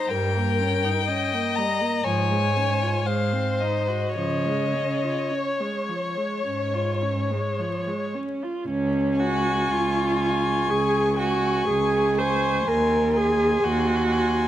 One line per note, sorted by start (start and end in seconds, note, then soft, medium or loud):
0.00 0.12 D#4 soft
0.00 0.12 C5 soft
0.00 0.11 A#5 medium
0.10 0.90 G2 soft
0.10 0.38 G3 soft
0.10 1.06 A#4 soft
0.10 1.57 G5 medium
0.37 0.63 A#3 soft
0.61 0.86 C#4 soft
0.85 1.10 D#4 soft
1.06 1.35 C#4 soft
1.06 2.05 D#5 soft
1.33 1.59 A#3 soft
1.55 1.83 G3 soft
1.55 2.05 A#5 medium
1.81 2.05 A#3 soft
2.03 2.88 G#2 soft
2.03 2.33 F3 soft
2.03 3.08 C#5 soft
2.03 3.08 G#5 medium
2.31 2.58 G#3 soft
2.56 2.83 C#4 soft
2.81 3.07 F4 soft
3.05 3.98 G#2 soft
3.05 3.34 G#3 soft
3.05 4.17 C5 soft
3.05 3.62 F5 soft
3.33 3.63 C4 soft
3.60 3.89 D#4 soft
3.60 4.17 D#5 soft
3.88 4.17 F#4 soft
4.16 5.13 C#3 soft
4.16 4.47 F3 soft
4.16 8.11 C#5 soft
4.16 5.36 D#5 soft
4.45 4.75 G#3 soft
4.74 5.05 C#4 soft
5.04 5.32 F4 soft
5.31 5.62 C#4 soft
5.31 8.15 C#5 soft
5.60 5.90 G#3 soft
5.88 6.18 F3 soft
6.17 6.45 G#3 soft
6.46 7.40 G#2 soft
6.46 6.76 C#4 soft
6.74 7.04 F4 soft
7.02 7.33 C#4 soft
7.31 7.61 G#3 soft
7.59 7.88 F3 soft
7.87 8.16 G#3 soft
8.15 8.44 C#4 soft
8.42 8.68 F4 soft
8.68 9.58 C#2 soft
8.68 9.21 C#4 soft
9.19 9.73 F#4 medium
9.19 10.18 G#5 soft
9.19 10.18 C#6 soft
9.70 10.58 C#2 soft
9.70 10.71 F4 soft
10.19 11.17 G#5 soft
10.19 11.17 C#6 soft
10.70 11.57 C#2 soft
10.70 11.18 G#4 medium
11.18 11.67 F#4 medium
11.18 12.16 G#5 soft
11.18 12.16 C#6 soft
11.68 12.56 C#2 soft
11.68 12.20 G#4 medium
12.18 12.69 C5 medium
12.18 12.66 G#5 soft
12.18 12.66 C#6 soft
12.67 13.52 D#2 soft
12.67 13.18 A#4 soft
12.67 13.15 G#5 soft
12.67 13.15 C6 soft
13.15 13.65 G#4 medium
13.15 14.08 G#5 soft
13.15 14.08 C6 soft
13.63 14.46 D#2 soft
13.63 14.48 F#4 medium
14.09 14.48 G#5 soft
14.09 14.48 C6 soft